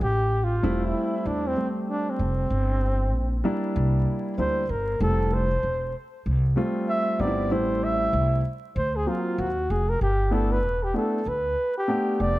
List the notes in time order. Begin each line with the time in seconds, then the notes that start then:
0.01 A1 G4
0.44 F4
0.62 E1 G3 A3 C4 E4
0.85 E4
1.25 E2 D4
1.47 C4
1.57 G3 A3 C4 G4
1.90 D4
2.10 C4
2.19 F1
2.50 G1
3.13 A#1
3.44 G3 A#3 D4 E4
3.76 C2
4.38 D2 G3 A#3 D4 E4 C5
4.69 G1 A#4
5.00 F1 G3 A3 C4 E4 A4
5.34 C5
5.63 E1
6.26 C2
6.56 G3 A3 C4 F4
6.89 E5
7.19 G1 G3 B3 C4 D#4 D5
7.27 E4
7.50 A1 G3 A3 C4 E4 C5
7.84 E5
8.13 C2
8.76 D2 C5
8.96 G#4
9.06 F#3 A#3 C4 F4
9.38 D#2 F#4
9.70 F1 G#4
9.89 A#4
10.01 G1 G4
10.31 A3 B3 D4 E4 A4
10.52 B4
10.63 E1
10.83 G4
10.94 A3 B3 D4 E4 A4
11.26 D2 B4
11.78 G4
11.88 A3 B3 D4 G4
12.20 F1 D5